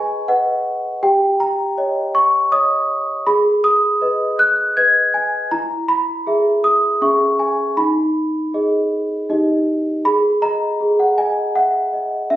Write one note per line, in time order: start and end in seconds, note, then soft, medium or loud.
0.00 1.05 G#4 medium
0.00 0.24 B4 medium
0.00 0.25 D#5 medium
0.00 0.28 G#5 medium
0.00 1.05 B5 loud
0.00 1.05 C#6 loud
0.28 0.99 B4 medium
0.28 0.99 D#5 medium
0.28 0.66 F#5 medium
1.03 1.75 G4 medium
1.03 1.40 G5 medium
1.40 2.15 A#5 loud
1.78 2.48 C#5 medium
1.78 2.49 D#5 medium
2.15 2.52 C#6 loud
2.52 3.23 C#5 medium
2.52 3.23 D#5 medium
2.52 3.27 D#6 loud
3.27 4.00 G#4 medium
3.27 3.64 B5 loud
3.64 4.39 D#6 loud
4.01 4.73 B4 medium
4.01 4.73 D#5 medium
4.39 4.77 F#6 loud
4.77 5.48 B4 medium
4.77 5.48 D#5 medium
4.77 5.14 G#6 loud
5.14 5.52 G#5 loud
5.51 6.24 E4 medium
5.51 5.89 A#5 loud
5.88 6.64 B5 loud
6.27 6.98 G#4 medium
6.27 6.98 E5 medium
6.64 7.02 D#6 loud
7.01 7.75 C#4 medium
7.01 7.74 G#4 medium
7.01 7.74 E5 medium
7.01 7.40 C#6 medium
7.39 7.78 G#5 medium
7.77 8.51 D#4 medium
7.77 9.30 B5 medium
8.54 9.26 G#4 medium
8.54 9.26 D#5 medium
9.30 10.03 D#4 medium
9.30 10.01 G4 soft
9.30 10.02 D#5 medium
10.05 10.79 G#4 medium
10.05 10.43 B5 loud
10.42 11.03 D#5 medium
10.42 10.99 A#5 loud
10.80 11.41 G#4 medium
10.99 11.18 F#5 medium
11.18 11.78 D#5 medium
11.18 11.56 G#5 loud
11.56 11.93 E5 medium
11.56 12.30 F#5 loud
11.93 12.31 D#5 medium
12.30 12.36 C#4 medium
12.30 12.36 E5 loud